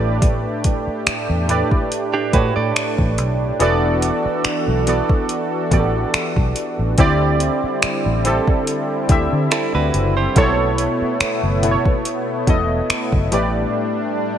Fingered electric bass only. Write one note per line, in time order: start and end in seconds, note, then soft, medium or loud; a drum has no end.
0.00 0.45 A1 medium
0.87 muted fingered electric bass stroke soft
1.07 muted fingered electric bass stroke soft
1.29 1.62 E2 medium
2.33 2.51 A2 medium
2.56 2.71 A2 medium
2.98 3.18 A1 medium
3.18 3.50 B1 medium
3.60 4.10 E1 medium
4.25 muted fingered electric bass stroke soft
4.45 muted fingered electric bass stroke soft
4.68 5.00 B1 medium
5.71 6.04 A1 medium
6.14 muted fingered electric bass stroke soft
6.37 6.51 B1 medium
6.79 6.94 A1 medium
6.98 7.48 D2 loud
7.63 muted fingered electric bass stroke soft
7.83 muted fingered electric bass stroke soft
8.06 8.38 A1 medium
9.09 9.27 D2 medium
9.32 9.47 D3 medium
9.74 9.89 D2 medium
9.94 10.26 F#1 medium
10.36 10.86 B1 loud
11.01 muted fingered electric bass stroke soft
11.21 muted fingered electric bass stroke soft
11.43 11.76 F#1 medium
12.47 12.80 E1 medium
12.90 muted fingered electric bass stroke soft
13.13 13.27 F#1 medium
13.32 13.64 A1 loud